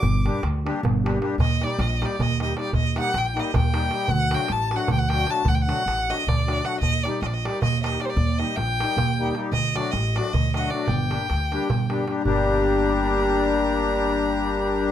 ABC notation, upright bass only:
X:1
M:7/8
L:1/8
Q:1/4=154
K:Gm
V:1 name="Upright bass" clef=bass
G,,,2 D,,2 G,,,3 | E,,2 B,,,2 E,,3 | E,,2 B,,,2 E,,3 | D,,2 A,,,2 D,,3 |
D,,2 A,,,2 D,,3 | E,,2 B,,,2 E,,3 | E,,2 B,,,2 E,,3 | D,,2 A,,,2 D,,3 |
G,,,2 D,,2 G,,,3 | G,,,6- G,,,- | G,,,6- G,,, |]